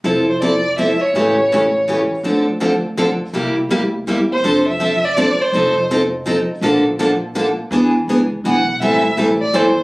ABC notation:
X:1
M:3/4
L:1/16
Q:"Swing" 1/4=164
K:F
V:1 name="Violin"
z2 c2 d4 e2 _d2- | _d8- d2 z2 | z12 | z8 z2 c2- |
c2 e4 d4 c2- | c4 z8 | z12 | z8 _g4 |
e4 z2 d2 c4 |]
V:2 name="Steel-string acoustic guitar"
[F,CEA]2 z2 [F,CEA] z3 [F,CEA] z3 | [^C,E,A,^CG]2 z2 [C,E,A,CG] z3 [C,E,A,CG] z3 | [D,F,CDA]2 z2 [D,F,CDA] z3 [D,F,CDA] z3 | [C,G,B,EG]2 z2 [C,G,B,EG] z3 [C,G,B,EG] z3 |
[F,CDA]2 z2 [F,CDA] z3 [F,CDA] z3 | [F,C_EA]2 z2 [F,CEA] z3 [F,CEA] z3 | [D,F,B,DA]2 z2 [D,F,B,DA] z3 [D,F,B,DA] z3 | [E,=B,D^G]2 z2 [E,B,DG] z3 [E,B,DG] z3 |
[E,G,CEA]2 z2 [E,G,CEA] z3 [E,G,CEA] z3 |]
V:3 name="Upright bass" clef=bass
F,,,12 | A,,,12 | D,,12 | C,,4 D,,4 E,,4 |
F,,,12 | F,,,12 | B,,,12 | E,,4 _D,,4 =B,,,4 |
A,,,4 A,,,4 G,,,4 |]